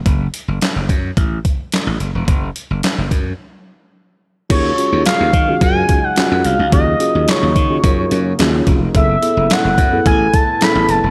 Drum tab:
CC |--------|--------|x-------|--------|
HH |xxxxxxxx|xxxx----|xxxxxxxx|xxxxxxxx|
CP |--x---x-|--x-----|--x---x-|--x---x-|
SD |--o---o-|--o-----|--o---o-|--o---o-|
BD |o--ooo--|o--o----|o--ooo--|o--oo--o|

CC |--------|
HH |xxxxxxxx|
CP |--x---x-|
SD |--o---o-|
BD |o--ooo--|